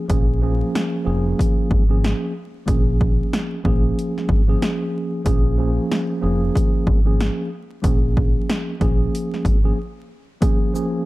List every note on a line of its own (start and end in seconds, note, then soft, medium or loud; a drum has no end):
0.08 0.61 A#1 loud
0.08 0.39 F3 medium
0.08 0.40 A#3 medium
0.08 0.40 C#4 medium
0.08 0.40 G#4 loud
0.08 kick loud
0.08 closed hi-hat loud
0.42 1.02 F3 loud
0.42 1.03 A#3 medium
0.42 1.03 C#4 medium
0.42 1.03 G#4 medium
0.75 snare loud
0.75 closed hi-hat medium
1.04 1.33 F1 medium
1.04 1.82 F3 medium
1.04 1.82 A#3 medium
1.04 1.82 C#4 medium
1.04 1.83 G#4 loud
1.39 kick loud
1.39 closed hi-hat medium
1.71 2.12 G#1 loud
1.71 kick loud
1.89 2.32 F3 medium
1.89 2.32 A#3 medium
1.89 2.32 C#4 medium
1.89 2.33 G#4 loud
2.04 snare loud
2.04 closed hi-hat medium
2.66 3.20 A#1 loud
2.66 3.57 F3 medium
2.66 3.58 A#3 medium
2.66 3.58 C#4 medium
2.66 3.58 G#4 loud
2.66 kick loud
2.66 closed hi-hat medium
3.01 kick medium
3.33 snare loud
3.33 closed hi-hat medium
3.64 3.91 A#1 medium
3.64 4.40 F3 loud
3.64 4.41 A#3 medium
3.64 4.41 C#4 medium
3.64 4.41 G#4 loud
3.64 kick loud
3.99 closed hi-hat medium
4.18 snare soft
4.29 4.55 G#1 loud
4.29 kick loud
4.48 5.20 F3 medium
4.48 5.21 A#3 medium
4.48 5.21 C#4 medium
4.48 5.21 G#4 loud
4.62 snare loud
4.62 closed hi-hat medium
5.25 5.78 A#1 loud
5.25 5.56 F3 loud
5.25 5.56 A#3 medium
5.25 5.56 C#4 medium
5.25 5.56 G#4 loud
5.25 kick loud
5.25 closed hi-hat loud
5.58 6.18 F3 loud
5.58 6.19 A#3 medium
5.58 6.19 C#4 medium
5.58 6.19 G#4 medium
5.92 snare loud
5.92 closed hi-hat medium
6.21 6.49 F1 medium
6.21 6.98 F3 medium
6.21 6.98 A#3 medium
6.21 6.99 C#4 medium
6.21 6.99 G#4 loud
6.55 kick loud
6.55 closed hi-hat medium
6.87 7.28 G#1 medium
6.87 kick loud
7.05 7.48 F3 loud
7.05 7.48 A#3 medium
7.05 7.48 C#4 medium
7.05 7.49 G#4 loud
7.20 snare loud
7.20 closed hi-hat medium
7.82 8.36 A#1 loud
7.82 8.74 F3 medium
7.82 8.74 A#3 medium
7.82 8.74 C#4 medium
7.82 8.74 G#4 loud
7.82 kick loud
7.82 closed hi-hat medium
8.17 kick medium
8.50 snare loud
8.50 closed hi-hat medium
8.80 9.07 A#1 medium
8.80 9.57 F3 loud
8.80 9.57 A#3 medium
8.80 9.57 C#4 medium
8.80 9.57 G#4 loud
8.80 kick medium
8.80 closed hi-hat soft
9.15 closed hi-hat medium
9.34 snare soft
9.45 9.71 G#1 medium
9.45 kick loud
9.45 closed hi-hat medium
9.64 9.77 F3 medium
9.64 9.77 A#3 medium
9.64 9.78 C#4 medium
9.64 9.78 G#4 loud
10.41 10.72 F3 loud
10.41 10.72 A#3 medium
10.41 10.72 C#4 medium
10.41 10.72 G#4 loud
10.41 kick loud
10.41 closed hi-hat loud
10.74 11.05 F3 loud
10.74 11.05 A#3 medium
10.74 11.05 C#4 medium
10.74 11.05 G#4 medium
10.74 shaker medium